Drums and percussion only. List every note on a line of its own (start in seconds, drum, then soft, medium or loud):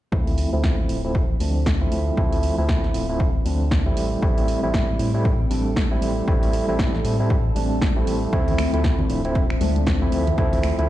0.12 kick loud
0.27 open hi-hat medium
0.38 open hi-hat loud
0.64 kick loud
0.64 snare loud
0.89 open hi-hat loud
1.15 kick loud
1.40 open hi-hat loud
1.66 kick loud
1.66 snare loud
1.92 open hi-hat loud
2.17 kick loud
2.33 open hi-hat medium
2.43 open hi-hat loud
2.69 kick loud
2.69 snare loud
2.84 snare soft
2.94 open hi-hat loud
3.20 kick loud
3.46 open hi-hat loud
3.71 kick loud
3.71 snare loud
3.97 open hi-hat loud
4.22 kick loud
4.38 open hi-hat medium
4.48 open hi-hat loud
4.74 kick loud
4.74 snare loud
4.99 open hi-hat loud
5.25 kick loud
5.51 open hi-hat loud
5.76 kick loud
5.76 snare loud
6.02 open hi-hat loud
6.28 kick loud
6.43 open hi-hat medium
6.53 open hi-hat loud
6.79 kick loud
6.79 snare loud
6.95 snare soft
7.05 open hi-hat loud
7.30 kick loud
7.56 open hi-hat loud
7.81 kick loud
7.81 snare loud
8.07 open hi-hat loud
8.33 kick loud
8.33 closed hi-hat soft
8.48 open hi-hat medium
8.48 low conga medium
8.58 finger snap medium
8.58 open hi-hat loud
8.74 closed hi-hat medium
8.84 kick loud
8.84 snare loud
8.84 closed hi-hat soft
8.99 low conga medium
9.10 open hi-hat loud
9.25 closed hi-hat medium
9.35 kick loud
9.35 closed hi-hat soft
9.50 finger snap medium
9.61 open hi-hat loud
9.61 high conga medium
9.76 closed hi-hat medium
9.86 kick loud
9.86 snare loud
9.86 closed hi-hat medium
10.12 open hi-hat loud
10.27 closed hi-hat medium
10.27 low conga medium
10.38 kick loud
10.38 closed hi-hat medium
10.53 open hi-hat medium
10.53 low conga medium
10.63 finger snap medium
10.63 open hi-hat medium
10.79 closed hi-hat medium